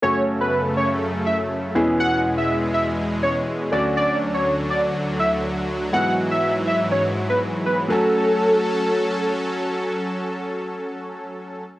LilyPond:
<<
  \new Staff \with { instrumentName = "Analog synth lead" } { \time 4/4 \key fis \minor \tempo 4 = 122 cis''8 r16 b'8 r16 cis''16 r8. e''16 r4 r16 | fis''8 r16 e''8 r16 e''16 r8. cis''16 r8. d''16 r16 | d''8 r16 cis''8 r16 d''16 r8. e''16 r4 r16 | fis''8 r16 e''8 r16 e''16 r16 cis''16 r8 b'16 r8 b'16 r16 |
a'2. r4 | r1 | }
  \new Staff \with { instrumentName = "Grand piano" } { \time 4/4 \key fis \minor <a cis' fis' a'>2.~ <a cis' fis' a'>8 <e b cis' e' gis'>8~ | <e b cis' e' gis'>2.~ <e b cis' e' gis'>8 <a cis' d' fis'>8~ | <a cis' d' fis'>2.~ <a cis' d' fis'>8 r8 | <gis b e' fis'>1 |
<fis a cis' fis'>1~ | <fis a cis' fis'>1 | }
  \new Staff \with { instrumentName = "Supersaw synth" } { \clef bass \time 4/4 \key fis \minor << { a2.~ a8 gis8~ | gis2.~ gis8 fis8~ | fis1~ | fis1 |
<fis cis' a'>1~ | <fis cis' a'>1 | } \\ { <fis, cis>2.~ <fis, cis>8 <e, b,>8~ | <e, b,>2.~ <e, b,>8 <d, d>8~ | <d, d>1 | <gis, e>1 |
r1 | r1 | } >> }
>>